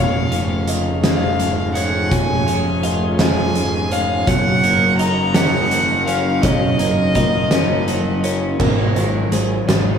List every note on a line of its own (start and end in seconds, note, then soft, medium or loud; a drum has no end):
0.00 2.08 F1 medium
0.00 1.76 C#2 medium
0.00 4.24 F3 medium
0.00 4.24 C#4 medium
0.00 4.24 G#4 medium
0.00 0.68 C#5 medium
0.00 0.68 F5 medium
0.31 2.11 C#3 soft
0.31 closed hi-hat soft
0.67 1.02 D#5 medium
0.67 closed hi-hat soft
1.03 1.74 G#3 soft
1.03 1.76 D#5 medium
1.03 1.72 F5 medium
1.03 snare medium
1.03 closed hi-hat medium
1.39 3.19 G#2 medium
1.39 closed hi-hat soft
1.75 3.18 G#3 medium
1.75 2.10 C#5 medium
1.75 2.13 F#5 medium
1.75 closed hi-hat soft
2.11 4.24 F1 medium
2.11 3.92 C#2 medium
2.11 2.84 C#5 medium
2.11 2.84 G#5 medium
2.11 kick medium
2.11 closed hi-hat medium
2.47 4.27 C#3 medium
2.47 closed hi-hat soft
2.83 4.28 F4 medium
2.83 3.18 D#5 medium
2.83 closed hi-hat soft
3.19 3.91 G#3 medium
3.19 3.92 D#5 medium
3.19 3.93 G#5 medium
3.19 snare medium
3.19 closed hi-hat medium
3.55 4.28 G#2 medium
3.55 closed hi-hat soft
3.91 4.28 G#3 medium
3.91 4.26 C#5 medium
3.91 4.29 F5 medium
3.91 closed hi-hat soft
4.27 6.40 F#1 medium
4.27 6.08 F#2 medium
4.27 8.56 F#3 medium
4.27 8.56 D#4 medium
4.27 8.56 A#4 medium
4.27 5.00 C#5 medium
4.27 4.98 F#5 medium
4.27 kick medium
4.27 closed hi-hat medium
4.64 6.44 A#3 medium
4.64 closed hi-hat soft
4.99 6.80 D#4 medium
4.99 5.34 D#5 medium
4.99 5.36 A#5 medium
4.99 closed hi-hat soft
5.34 6.07 C#4 medium
5.34 6.08 D#5 medium
5.34 6.06 F#5 medium
5.34 snare medium
5.34 closed hi-hat medium
5.71 7.52 F#3 medium
5.71 closed hi-hat soft
6.07 7.50 C#4 medium
6.07 6.42 C#5 medium
6.07 6.44 F5 medium
6.07 closed hi-hat soft
6.42 8.56 F#1 medium
6.42 8.24 F#2 medium
6.42 7.16 C#5 medium
6.42 8.23 D#5 medium
6.42 kick medium
6.42 closed hi-hat medium
6.79 8.60 A#3 medium
6.79 closed hi-hat soft
7.15 8.60 D#4 medium
7.15 7.51 D#5 medium
7.15 kick medium
7.15 closed hi-hat soft
7.51 8.23 C#4 medium
7.51 8.24 D#5 medium
7.51 snare medium
7.51 closed hi-hat medium
7.88 8.60 F#3 medium
7.88 closed hi-hat medium
8.24 8.60 C#4 medium
8.24 8.60 C#5 medium
8.24 closed hi-hat soft
8.60 8.87 G#1 medium
8.60 9.98 G#2 medium
8.60 9.98 F#3 medium
8.60 9.98 C#4 medium
8.60 9.98 G#4 medium
8.60 9.32 A#4 medium
8.60 kick medium
8.60 crash medium
8.96 9.23 G#1 medium
8.96 9.98 D#3 medium
8.96 closed hi-hat soft
9.32 9.59 G#1 medium
9.32 9.98 G#3 medium
9.32 9.98 C5 medium
9.32 closed hi-hat soft
9.68 9.95 G#1 medium
9.68 9.98 D#4 soft
9.68 snare medium
9.68 closed hi-hat medium